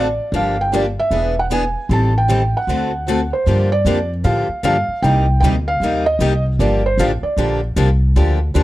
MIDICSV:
0, 0, Header, 1, 5, 480
1, 0, Start_track
1, 0, Key_signature, -2, "minor"
1, 0, Tempo, 390879
1, 418, Time_signature, 4, 2, 24, 8
1, 10601, End_track
2, 0, Start_track
2, 0, Title_t, "Felt piano"
2, 0, Program_c, 0, 0
2, 0, Note_on_c, 0, 74, 83
2, 443, Note_on_c, 0, 77, 80
2, 447, Note_off_c, 0, 74, 0
2, 745, Note_off_c, 0, 77, 0
2, 749, Note_on_c, 0, 79, 84
2, 915, Note_off_c, 0, 79, 0
2, 916, Note_on_c, 0, 74, 82
2, 983, Note_off_c, 0, 74, 0
2, 1222, Note_on_c, 0, 76, 98
2, 1660, Note_off_c, 0, 76, 0
2, 1711, Note_on_c, 0, 78, 90
2, 1772, Note_off_c, 0, 78, 0
2, 1872, Note_on_c, 0, 80, 88
2, 2359, Note_off_c, 0, 80, 0
2, 2371, Note_on_c, 0, 81, 82
2, 2670, Note_off_c, 0, 81, 0
2, 2673, Note_on_c, 0, 79, 92
2, 3106, Note_off_c, 0, 79, 0
2, 3154, Note_on_c, 0, 78, 80
2, 4051, Note_off_c, 0, 78, 0
2, 4091, Note_on_c, 0, 72, 72
2, 4535, Note_off_c, 0, 72, 0
2, 4569, Note_on_c, 0, 74, 104
2, 5013, Note_off_c, 0, 74, 0
2, 5213, Note_on_c, 0, 77, 85
2, 5662, Note_off_c, 0, 77, 0
2, 5709, Note_on_c, 0, 77, 95
2, 6150, Note_off_c, 0, 77, 0
2, 6171, Note_on_c, 0, 79, 90
2, 6618, Note_off_c, 0, 79, 0
2, 6636, Note_on_c, 0, 79, 95
2, 6708, Note_off_c, 0, 79, 0
2, 6972, Note_on_c, 0, 77, 90
2, 7414, Note_off_c, 0, 77, 0
2, 7444, Note_on_c, 0, 75, 107
2, 7890, Note_off_c, 0, 75, 0
2, 8108, Note_on_c, 0, 74, 80
2, 8387, Note_off_c, 0, 74, 0
2, 8424, Note_on_c, 0, 72, 87
2, 8592, Note_off_c, 0, 72, 0
2, 8592, Note_on_c, 0, 77, 85
2, 8659, Note_off_c, 0, 77, 0
2, 8881, Note_on_c, 0, 74, 79
2, 9328, Note_off_c, 0, 74, 0
2, 10601, End_track
3, 0, Start_track
3, 0, Title_t, "Steel-string acoustic guitar"
3, 0, Program_c, 1, 25
3, 419, Note_on_c, 1, 50, 57
3, 420, Note_on_c, 1, 53, 65
3, 421, Note_on_c, 1, 62, 68
3, 423, Note_on_c, 1, 58, 64
3, 427, Note_on_c, 1, 67, 74
3, 685, Note_off_c, 1, 50, 0
3, 686, Note_off_c, 1, 53, 0
3, 687, Note_off_c, 1, 62, 0
3, 688, Note_off_c, 1, 58, 0
3, 690, Note_off_c, 1, 67, 0
3, 883, Note_on_c, 1, 50, 76
3, 888, Note_on_c, 1, 53, 80
3, 890, Note_on_c, 1, 58, 83
3, 892, Note_on_c, 1, 62, 88
3, 898, Note_on_c, 1, 67, 92
3, 1032, Note_off_c, 1, 50, 0
3, 1034, Note_off_c, 1, 53, 0
3, 1036, Note_off_c, 1, 58, 0
3, 1037, Note_off_c, 1, 62, 0
3, 1040, Note_off_c, 1, 67, 0
3, 1377, Note_on_c, 1, 52, 47
3, 1379, Note_on_c, 1, 59, 55
3, 1384, Note_on_c, 1, 62, 53
3, 1388, Note_on_c, 1, 71, 57
3, 1392, Note_on_c, 1, 68, 65
3, 1645, Note_off_c, 1, 52, 0
3, 1646, Note_off_c, 1, 59, 0
3, 1648, Note_off_c, 1, 62, 0
3, 1650, Note_off_c, 1, 71, 0
3, 1652, Note_off_c, 1, 68, 0
3, 1843, Note_on_c, 1, 52, 62
3, 1843, Note_on_c, 1, 59, 72
3, 1852, Note_on_c, 1, 62, 71
3, 1853, Note_on_c, 1, 71, 73
3, 1858, Note_on_c, 1, 68, 77
3, 1992, Note_off_c, 1, 52, 0
3, 1992, Note_off_c, 1, 59, 0
3, 1997, Note_off_c, 1, 62, 0
3, 1997, Note_off_c, 1, 71, 0
3, 2000, Note_off_c, 1, 68, 0
3, 2332, Note_on_c, 1, 51, 57
3, 2337, Note_on_c, 1, 55, 56
3, 2341, Note_on_c, 1, 67, 72
3, 2343, Note_on_c, 1, 60, 67
3, 2346, Note_on_c, 1, 69, 69
3, 2603, Note_off_c, 1, 51, 0
3, 2605, Note_off_c, 1, 55, 0
3, 2607, Note_off_c, 1, 67, 0
3, 2608, Note_off_c, 1, 60, 0
3, 2610, Note_off_c, 1, 69, 0
3, 2802, Note_on_c, 1, 51, 73
3, 2802, Note_on_c, 1, 55, 79
3, 2807, Note_on_c, 1, 67, 83
3, 2810, Note_on_c, 1, 69, 89
3, 2811, Note_on_c, 1, 60, 80
3, 2952, Note_off_c, 1, 51, 0
3, 2952, Note_off_c, 1, 55, 0
3, 2954, Note_off_c, 1, 67, 0
3, 2956, Note_off_c, 1, 60, 0
3, 2956, Note_off_c, 1, 69, 0
3, 3282, Note_on_c, 1, 50, 53
3, 3289, Note_on_c, 1, 60, 56
3, 3292, Note_on_c, 1, 66, 56
3, 3293, Note_on_c, 1, 57, 57
3, 3297, Note_on_c, 1, 69, 57
3, 3558, Note_off_c, 1, 50, 0
3, 3561, Note_off_c, 1, 60, 0
3, 3562, Note_off_c, 1, 66, 0
3, 3563, Note_off_c, 1, 57, 0
3, 3565, Note_off_c, 1, 69, 0
3, 3765, Note_on_c, 1, 50, 64
3, 3770, Note_on_c, 1, 60, 66
3, 3776, Note_on_c, 1, 57, 72
3, 3778, Note_on_c, 1, 69, 71
3, 3780, Note_on_c, 1, 66, 75
3, 3913, Note_off_c, 1, 50, 0
3, 3916, Note_off_c, 1, 60, 0
3, 3919, Note_off_c, 1, 57, 0
3, 3920, Note_off_c, 1, 69, 0
3, 3921, Note_off_c, 1, 66, 0
3, 4247, Note_on_c, 1, 50, 66
3, 4254, Note_on_c, 1, 53, 64
3, 4258, Note_on_c, 1, 67, 68
3, 4261, Note_on_c, 1, 58, 68
3, 4263, Note_on_c, 1, 62, 77
3, 4520, Note_off_c, 1, 50, 0
3, 4524, Note_off_c, 1, 53, 0
3, 4525, Note_off_c, 1, 67, 0
3, 4527, Note_off_c, 1, 58, 0
3, 4528, Note_off_c, 1, 62, 0
3, 4732, Note_on_c, 1, 50, 89
3, 4741, Note_on_c, 1, 53, 81
3, 4743, Note_on_c, 1, 58, 93
3, 4751, Note_on_c, 1, 62, 82
3, 4751, Note_on_c, 1, 67, 92
3, 4877, Note_off_c, 1, 50, 0
3, 4881, Note_off_c, 1, 53, 0
3, 4882, Note_off_c, 1, 58, 0
3, 4886, Note_off_c, 1, 62, 0
3, 4886, Note_off_c, 1, 67, 0
3, 5204, Note_on_c, 1, 50, 63
3, 5213, Note_on_c, 1, 58, 60
3, 5216, Note_on_c, 1, 53, 66
3, 5219, Note_on_c, 1, 62, 58
3, 5220, Note_on_c, 1, 67, 67
3, 5478, Note_off_c, 1, 50, 0
3, 5483, Note_off_c, 1, 58, 0
3, 5485, Note_off_c, 1, 53, 0
3, 5486, Note_off_c, 1, 62, 0
3, 5486, Note_off_c, 1, 67, 0
3, 5694, Note_on_c, 1, 53, 73
3, 5698, Note_on_c, 1, 50, 65
3, 5700, Note_on_c, 1, 58, 71
3, 5707, Note_on_c, 1, 62, 80
3, 5712, Note_on_c, 1, 67, 84
3, 5838, Note_off_c, 1, 53, 0
3, 5840, Note_off_c, 1, 50, 0
3, 5840, Note_off_c, 1, 58, 0
3, 5844, Note_off_c, 1, 62, 0
3, 5847, Note_off_c, 1, 67, 0
3, 6178, Note_on_c, 1, 48, 69
3, 6178, Note_on_c, 1, 55, 62
3, 6187, Note_on_c, 1, 58, 74
3, 6187, Note_on_c, 1, 63, 63
3, 6194, Note_on_c, 1, 67, 64
3, 6445, Note_off_c, 1, 48, 0
3, 6445, Note_off_c, 1, 55, 0
3, 6449, Note_off_c, 1, 63, 0
3, 6450, Note_off_c, 1, 58, 0
3, 6453, Note_off_c, 1, 67, 0
3, 6658, Note_on_c, 1, 48, 78
3, 6665, Note_on_c, 1, 55, 77
3, 6665, Note_on_c, 1, 63, 88
3, 6670, Note_on_c, 1, 58, 87
3, 6673, Note_on_c, 1, 67, 96
3, 6799, Note_off_c, 1, 48, 0
3, 6803, Note_off_c, 1, 55, 0
3, 6803, Note_off_c, 1, 63, 0
3, 6806, Note_off_c, 1, 58, 0
3, 6807, Note_off_c, 1, 67, 0
3, 7136, Note_on_c, 1, 48, 60
3, 7142, Note_on_c, 1, 55, 65
3, 7148, Note_on_c, 1, 58, 64
3, 7148, Note_on_c, 1, 63, 60
3, 7151, Note_on_c, 1, 67, 64
3, 7404, Note_off_c, 1, 48, 0
3, 7407, Note_off_c, 1, 55, 0
3, 7410, Note_off_c, 1, 58, 0
3, 7410, Note_off_c, 1, 63, 0
3, 7411, Note_off_c, 1, 67, 0
3, 7610, Note_on_c, 1, 48, 68
3, 7613, Note_on_c, 1, 55, 75
3, 7613, Note_on_c, 1, 58, 74
3, 7618, Note_on_c, 1, 63, 72
3, 7625, Note_on_c, 1, 67, 89
3, 7755, Note_off_c, 1, 48, 0
3, 7757, Note_off_c, 1, 55, 0
3, 7757, Note_off_c, 1, 58, 0
3, 7759, Note_off_c, 1, 63, 0
3, 7762, Note_off_c, 1, 67, 0
3, 8095, Note_on_c, 1, 50, 60
3, 8095, Note_on_c, 1, 53, 59
3, 8100, Note_on_c, 1, 62, 68
3, 8102, Note_on_c, 1, 58, 76
3, 8104, Note_on_c, 1, 67, 74
3, 8363, Note_off_c, 1, 50, 0
3, 8363, Note_off_c, 1, 53, 0
3, 8365, Note_off_c, 1, 62, 0
3, 8367, Note_off_c, 1, 58, 0
3, 8368, Note_off_c, 1, 67, 0
3, 8572, Note_on_c, 1, 50, 92
3, 8576, Note_on_c, 1, 53, 78
3, 8583, Note_on_c, 1, 58, 85
3, 8587, Note_on_c, 1, 62, 96
3, 8587, Note_on_c, 1, 67, 90
3, 8716, Note_off_c, 1, 50, 0
3, 8718, Note_off_c, 1, 53, 0
3, 8722, Note_off_c, 1, 58, 0
3, 8723, Note_off_c, 1, 67, 0
3, 8724, Note_off_c, 1, 62, 0
3, 9057, Note_on_c, 1, 50, 69
3, 9070, Note_on_c, 1, 58, 61
3, 9071, Note_on_c, 1, 53, 58
3, 9071, Note_on_c, 1, 62, 62
3, 9080, Note_on_c, 1, 67, 71
3, 9324, Note_off_c, 1, 50, 0
3, 9330, Note_off_c, 1, 58, 0
3, 9331, Note_off_c, 1, 53, 0
3, 9331, Note_off_c, 1, 62, 0
3, 9335, Note_off_c, 1, 67, 0
3, 9537, Note_on_c, 1, 50, 74
3, 9539, Note_on_c, 1, 53, 68
3, 9541, Note_on_c, 1, 62, 79
3, 9542, Note_on_c, 1, 58, 72
3, 9548, Note_on_c, 1, 67, 81
3, 9678, Note_off_c, 1, 50, 0
3, 9679, Note_off_c, 1, 53, 0
3, 9680, Note_off_c, 1, 62, 0
3, 9681, Note_off_c, 1, 58, 0
3, 9684, Note_off_c, 1, 67, 0
3, 10017, Note_on_c, 1, 50, 69
3, 10020, Note_on_c, 1, 53, 72
3, 10026, Note_on_c, 1, 58, 68
3, 10027, Note_on_c, 1, 67, 77
3, 10029, Note_on_c, 1, 62, 69
3, 10284, Note_off_c, 1, 50, 0
3, 10285, Note_off_c, 1, 53, 0
3, 10288, Note_off_c, 1, 58, 0
3, 10289, Note_off_c, 1, 67, 0
3, 10290, Note_off_c, 1, 62, 0
3, 10489, Note_on_c, 1, 50, 83
3, 10489, Note_on_c, 1, 53, 88
3, 10496, Note_on_c, 1, 62, 84
3, 10500, Note_on_c, 1, 58, 76
3, 10503, Note_on_c, 1, 67, 84
3, 10601, Note_off_c, 1, 50, 0
3, 10601, Note_off_c, 1, 53, 0
3, 10601, Note_off_c, 1, 58, 0
3, 10601, Note_off_c, 1, 62, 0
3, 10601, Note_off_c, 1, 67, 0
3, 10601, End_track
4, 0, Start_track
4, 0, Title_t, "Upright bass"
4, 0, Program_c, 2, 32
4, 0, Note_on_c, 2, 33, 73
4, 217, Note_off_c, 2, 33, 0
4, 392, Note_on_c, 2, 31, 84
4, 1171, Note_off_c, 2, 31, 0
4, 1357, Note_on_c, 2, 28, 67
4, 2134, Note_off_c, 2, 28, 0
4, 2323, Note_on_c, 2, 33, 95
4, 3098, Note_off_c, 2, 33, 0
4, 3280, Note_on_c, 2, 38, 75
4, 4056, Note_off_c, 2, 38, 0
4, 4255, Note_on_c, 2, 43, 82
4, 4715, Note_off_c, 2, 43, 0
4, 4723, Note_on_c, 2, 41, 84
4, 5196, Note_off_c, 2, 41, 0
4, 5210, Note_on_c, 2, 45, 78
4, 5499, Note_off_c, 2, 45, 0
4, 5688, Note_on_c, 2, 43, 72
4, 5977, Note_off_c, 2, 43, 0
4, 6169, Note_on_c, 2, 36, 86
4, 6639, Note_off_c, 2, 36, 0
4, 6651, Note_on_c, 2, 38, 94
4, 7115, Note_off_c, 2, 38, 0
4, 7122, Note_on_c, 2, 39, 74
4, 7592, Note_off_c, 2, 39, 0
4, 7599, Note_on_c, 2, 36, 78
4, 8073, Note_off_c, 2, 36, 0
4, 8094, Note_on_c, 2, 31, 89
4, 8557, Note_off_c, 2, 31, 0
4, 8564, Note_on_c, 2, 33, 86
4, 8855, Note_off_c, 2, 33, 0
4, 9045, Note_on_c, 2, 34, 73
4, 9517, Note_off_c, 2, 34, 0
4, 9533, Note_on_c, 2, 36, 82
4, 10000, Note_off_c, 2, 36, 0
4, 10019, Note_on_c, 2, 38, 90
4, 10483, Note_off_c, 2, 38, 0
4, 10501, Note_on_c, 2, 39, 92
4, 10601, Note_off_c, 2, 39, 0
4, 10601, End_track
5, 0, Start_track
5, 0, Title_t, "Muted upright bass strokes"
5, 5511, Note_on_c, 9, 29, 38
5, 5634, Note_off_c, 9, 29, 0
5, 5991, Note_on_c, 9, 29, 35
5, 6114, Note_off_c, 9, 29, 0
5, 8872, Note_on_c, 9, 29, 33
5, 8994, Note_off_c, 9, 29, 0
5, 10601, End_track
0, 0, End_of_file